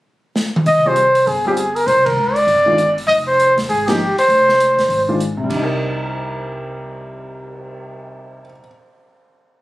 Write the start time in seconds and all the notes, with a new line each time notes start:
0.36 snare
0.56 mid tom
0.66 C2 D#5, open hi-hat
0.86 G3 C4 F4 G#4 C5
0.96 closed hi-hat
1.15 open hi-hat
1.27 G1 G#4, open hi-hat
1.46 G3 C4 F4 G4 G#4
1.57 G#4, closed hi-hat
1.76 A#4, open hi-hat
1.87 C2 C5, open hi-hat
2.06 A#4, kick, ride
2.17 C#2
2.34 D5, open hi-hat
2.47 G1, open hi-hat
2.66 D#3 G#3 D4 F4
2.78 closed hi-hat
2.98 open hi-hat
3.07 F1 D#5, open hi-hat
3.27 C5
3.40 closed hi-hat
3.57 D#2, snare, open hi-hat
3.69 G#1 G#4, open hi-hat
3.87 F3 A#3 D#4 G4, snare, ride
4.17 C5, muted upright bass stroke, open hi-hat
4.28 F1, open hi-hat
4.49 snare
4.60 closed hi-hat
4.77 D#2, snare, open hi-hat
4.89 G#1, open hi-hat
5.08 D#3 G#3 D4 F4
5.20 closed hi-hat
5.37 C3
5.44 G3
5.49 C2 D4, kick, crash
5.56 D#4
5.63 A#4
5.69 cymbal swell